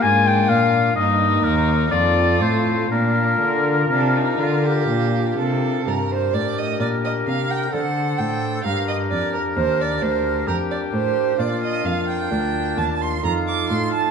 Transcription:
<<
  \new Staff \with { instrumentName = "Violin" } { \time 3/4 \key bes \major \tempo 4 = 64 f'4 ees'4 f'4 | d'4 d'16 ees'16 f'16 g'8. a'8 | \key g \minor bes'16 c''16 d''16 ees''16 d''16 ees''16 f''16 g''16 fis''8 g''8 | f''16 ees''16 d''16 bes'16 c''16 d''16 c''8 bes'16 d''16 c''8 |
d''16 ees''16 f''16 g''8. a''16 c'''16 bes''16 d'''16 c'''16 a''16 | }
  \new Staff \with { instrumentName = "Oboe" } { \time 3/4 \key bes \major aes''16 g''16 f''8 ees''8 bes'8 d''8 c''8 | bes'2 r4 | \key g \minor r4 bes'4 a'4 | bes'2 g'4 |
f'4 d'8 r8 f'4 | }
  \new Staff \with { instrumentName = "Pipe organ" } { \time 3/4 \key bes \major <bes d' bes'>4 <bes ees' bes'>4 <c' f' a'>4 | <d' f' bes'>2. | \key g \minor <d' g' bes'>2 <d' a' c''>4 | <d' g' bes'>2. |
<d' f' bes'>2 <ees' f' a'>4 | }
  \new Staff \with { instrumentName = "Pipe organ" } { \clef bass \time 3/4 \key bes \major aes,8 bes,8 g,8 ees,8 f,8 a,8 | bes,8 d8 c8 d8 bes,8 c8 | \key g \minor g,8 a,8 bes,8 c8 d8 a,8 | g,8 f,8 ees,8 d,8 f,8 a,8 |
bes,8 f,8 d,8 ees,8 f,8 a,8 | }
  \new Staff \with { instrumentName = "Cello" } { \clef bass \time 3/4 \key bes \major aes,8 bes,8 g,8 ees,8 f,8 a,8 | bes,8 d8 c8 d8 bes,8 c8 | \key g \minor g,8 a,8 bes,8 c8 d8 a,8 | g,8 f,8 ees,8 d,8 f,8 a,8 |
bes,8 f,8 d,8 ees,8 f,8 a,8 | }
>>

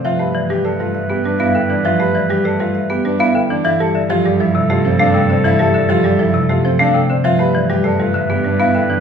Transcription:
<<
  \new Staff \with { instrumentName = "Celesta" } { \time 3/4 \key g \mixolydian \tempo 4 = 100 e''16 r16 e''16 r4. f''16 g''16 r16 | e''16 r16 e''16 r4. f''16 g''16 r16 | e''16 r16 e''16 r4. f''16 g''16 r16 | e''16 r16 e''16 r4. f''16 g''16 r16 |
e''16 r16 e''16 r4. f''16 g''16 r16 | }
  \new Staff \with { instrumentName = "Marimba" } { \time 3/4 \key g \mixolydian f''16 g'16 d''16 g'16 d''16 a'16 e''16 g'16 b'16 f''16 a'16 d''16 | f''16 g'16 d''16 g'16 d''16 a'16 e''16 g'16 b'16 f''16 a'16 d''16 | f''16 g'16 d''16 g'16 d''16 a'16 e''16 g'16 c''16 f''16 a'16 d''16 | f''16 g'16 d''16 g'16 d''16 a'16 e''16 g'16 c''16 f''16 a'16 d''16 |
f''16 g'16 d''16 g'16 d''16 a'16 e''16 g'16 b'16 f''16 a'16 d''16 | }
  \new Staff \with { instrumentName = "Clarinet" } { \time 3/4 \key g \mixolydian b'2.~ | b'2~ b'8. r16 | a'2.~ | a'2~ a'8. r16 |
b'2. | }
  \new Staff \with { instrumentName = "Grand piano" } { \time 3/4 \key g \mixolydian f'16 b'16 r16 g'16 a'16 f'16 r16 g'16 d'16 e'16 r16 d'16 | f'16 b'16 r16 g'16 a'16 f'16 r16 g'16 d'16 e'16 r16 d'16 | e'16 a'16 r16 f'16 g'16 e'16 r16 f'16 c'16 d'16 r16 c'16 | e'16 a'16 r16 f'16 g'16 e'16 r16 f'16 c'16 d'16 r16 c'16 |
f'16 b'16 r16 g'16 a'16 f'16 r16 g'16 d'16 e'16 r16 d'16 | }
  \new Staff \with { instrumentName = "Marimba" } { \clef bass \time 3/4 \key g \mixolydian f16 a16 e16 g16 a16 g16 r16 b16 g16 b16 d16 e16 | f16 a16 e16 g16 a16 g16 r16 b16 g16 b16 d16 e16 | e16 g16 d16 f16 g16 f16 c16 a16 f16 a16 c16 d16 | e16 g16 d16 f16 g16 f16 c16 a16 f16 a16 c16 d16 |
f16 a16 e16 g16 a16 g16 d16 b16 g16 b16 d16 e16 | }
  \new Staff \with { instrumentName = "Cello" } { \clef bass \time 3/4 \key g \mixolydian g,2.~ | g,2. | g,2.~ | g,2. |
g,2. | }
>>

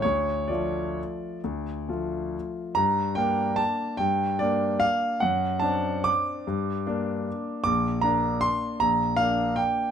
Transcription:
<<
  \new Staff \with { instrumentName = "Grand piano" } { \time 3/4 \key d \minor \tempo 4 = 148 cis''4 d''2~ | d''2 r4 | \key g \minor bes''4 g''4 a''4 | g''4 d''4 f''4 |
fis''4 a''4 d'''4~ | d'''2. | d'''4 bes''4 c'''4 | bes''4 f''4 g''4 | }
  \new Staff \with { instrumentName = "Grand piano" } { \time 3/4 \key d \minor d,4 <f a f'>2 | d,4 <f a f'>2 | \key g \minor g,4 <bes d'>2 | g,4 <bes d'>2 |
fis,4 <c' d'>2 | g,4 <bes d'>2 | bes,,4 <bes d'>2 | bes,,4 <bes d'>2 | }
>>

